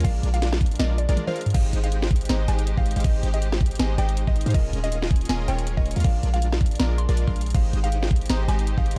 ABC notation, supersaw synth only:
X:1
M:4/4
L:1/16
Q:"Swing 16ths" 1/4=160
K:Ab
V:1 name="Supersaw synth"
[=D=d]2 [A,DFBd]6 [A,DFBd]2 z [A,DFBd]2 [A,DFBf]2 z | [A,EGce]2 [A,EGce]6 [A,EGce]2 [A,EGce]3 [A,EGce]2 [A,EGcf] | [A,EGe]2 [A,EGce]6 [A,EGce]2 [A,EGce]3 [A,EGce]2 [A,EGcf] | [A,DFBe]2 [A,DFBe]6 [A,DFBe]2 [A,DFBd]3 [A,DFBd]2 [A,DFBf] |
[A,=DFB=d]2 [A,DFBd]6 [A,DFBd]2 z [A,DFBd]2 [A,DFBf]2 z | [A,EGce]2 [A,EGce]6 [A,EGce]2 [A,EGce]3 [A,EGce]2 z |]